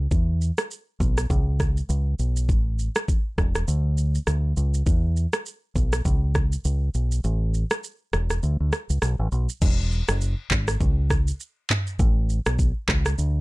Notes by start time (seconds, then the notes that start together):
0.11 E2, kick, shaker
0.41 shaker
0.58 cross-stick, shaker
0.71 shaker
1.00 B1, kick, shaker
1.17 cross-stick, shaker
1.30 C#2, kick, shaker
1.60 kick, cross-stick, shaker
1.77 shaker
1.89 C#2, shaker
2.19 B1, shaker
2.36 shaker
2.49 A1, kick, shaker
2.79 shaker
2.96 cross-stick, shaker
3.08 kick, shaker
3.38 E1, kick, cross-stick, shaker
3.55 cross-stick, shaker
3.68 D2, shaker
3.98 shaker
4.15 shaker
4.27 D2, cross-stick, shaker
4.57 C#2, shaker
4.74 shaker
4.87 E2, kick, shaker
5.17 shaker
5.33 cross-stick, shaker
5.46 shaker
5.76 B1, kick, shaker
5.93 cross-stick, shaker
6.05 C#2, kick, shaker
6.35 kick, cross-stick, shaker
6.52 shaker
6.65 C#2, shaker
6.94 B1, shaker
7.12 shaker
7.24 A1, shaker
7.54 shaker
7.71 cross-stick, shaker
7.84 shaker
8.13 E1, cross-stick, shaker
8.30 cross-stick, shaker
8.43 D2, shaker
8.60 D2
8.72 cross-stick, shaker
8.90 C#2, shaker
9.02 B1, cross-stick, shaker
9.19 A1
9.32 B1, shaker
9.49 shaker
9.62 E1, kick, crash, shaker
9.92 shaker
10.08 F#1, cross-stick, shaker
10.21 shaker
10.51 G#1, kick, clap, shaker
10.68 cross-stick, shaker
10.81 C#2, kick, shaker
11.10 kick, cross-stick, shaker
11.28 shaker
11.40 shaker
11.70 clap, mid tom, shaker
11.87 shaker
11.99 A1, kick, shaker
12.30 shaker
12.46 B1, cross-stick, shaker
12.59 kick, shaker
12.88 C#2, kick, cross-stick, clap, shaker
13.06 cross-stick, shaker
13.18 D2, shaker